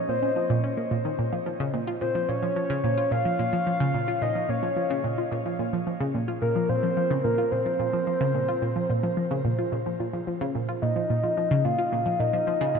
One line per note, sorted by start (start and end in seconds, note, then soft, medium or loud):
0.09 0.18 A#2 medium
0.09 0.60 C5 medium
0.22 0.31 C#4 medium
0.36 0.45 F3 medium
0.50 0.59 A#2 loud
0.64 0.69 C#4 medium
0.77 0.91 A#3 medium
0.91 0.97 A#2 medium
1.05 1.10 D#3 medium
1.19 1.28 A#2 medium
1.33 1.38 F3 medium
1.46 1.55 F3 medium
1.60 1.73 C#3 loud
1.74 1.87 A#2 medium
1.88 1.97 F4 medium
2.01 2.10 A#2 medium
2.01 2.30 C5 medium
2.15 2.24 F3 medium
2.29 2.38 A#2 medium
2.29 3.13 C#5 loud
2.43 2.48 F3 medium
2.56 2.65 F3 medium
2.70 2.83 C#3 loud
2.84 2.97 A#2 medium
2.98 3.07 F4 medium
3.11 3.20 A#2 medium
3.11 4.24 F5 loud
3.25 3.34 F3 medium
3.39 3.48 A#2 medium
3.53 3.58 F3 medium
3.67 3.76 F3 medium
3.80 3.93 C#3 loud
3.94 4.07 A#2 medium
4.08 4.17 F4 medium
4.22 4.31 A#2 medium
4.22 4.51 D#5 loud
4.35 4.44 F3 medium
4.49 4.58 A#2 medium
4.49 5.04 C#5 medium
4.63 4.68 F3 medium
4.77 4.86 F3 medium
4.90 5.03 C#3 loud
5.04 5.17 A#2 medium
5.18 5.27 F4 medium
5.32 5.41 A#2 medium
5.46 5.54 F3 medium
5.59 5.68 A#2 medium
5.73 5.78 F3 medium
5.87 5.96 F3 medium
6.01 6.14 C#3 loud
6.14 6.27 A#2 medium
6.28 6.37 F4 medium
6.42 6.51 A#2 medium
6.42 6.71 A#4 loud
6.56 6.64 F3 medium
6.69 6.78 A#2 medium
6.69 7.25 C5 loud
6.83 6.88 F3 medium
6.97 7.06 F3 medium
7.10 7.24 C#3 loud
7.24 7.37 A#2 medium
7.24 7.53 A#4 loud
7.38 7.47 F4 medium
7.51 7.61 A#2 medium
7.51 9.44 C5 loud
7.66 7.75 F3 medium
7.79 7.88 A#2 medium
7.93 7.99 F3 medium
8.07 8.16 F3 medium
8.21 8.34 C#3 loud
8.34 8.47 A#2 medium
8.48 8.57 F4 medium
8.62 8.71 A#2 medium
8.76 8.85 F3 medium
8.90 8.99 A#2 medium
9.03 9.09 F3 medium
9.17 9.26 F3 medium
9.31 9.44 C#3 loud
9.45 9.58 A#2 medium
9.59 9.67 F4 medium
9.72 9.81 A#2 medium
9.86 9.95 F3 medium
10.00 10.09 A#2 medium
10.13 10.19 F3 medium
10.27 10.33 F3 medium
10.41 10.54 C#3 loud
10.55 10.68 A#2 medium
10.69 10.77 F4 medium
10.82 10.91 A#2 medium
10.82 11.66 D#5 loud
10.96 11.05 F3 medium
11.10 11.19 A#2 medium
11.23 11.29 F3 medium
11.37 11.43 F3 medium
11.51 11.64 C#3 loud
11.65 11.78 A#2 medium
11.65 12.21 F5 loud
11.79 11.87 F4 medium
11.92 12.01 A#2 medium
12.06 12.15 F3 medium
12.20 12.29 A#2 medium
12.20 12.80 D#5 loud
12.33 12.39 F3 medium
12.47 12.53 F3 medium
12.61 12.74 C#3 loud
12.75 12.80 A#2 medium